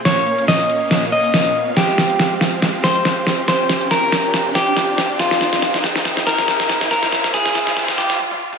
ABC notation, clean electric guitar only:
X:1
M:4/4
L:1/8
Q:"Swing 16ths" 1/4=140
K:Fm
V:1 name="Clean electric guitar"
d2 e3 e3 | G3 z2 c3 | c2 B3 G3 | F3 z2 B3 |
B2 A3 G z2 |]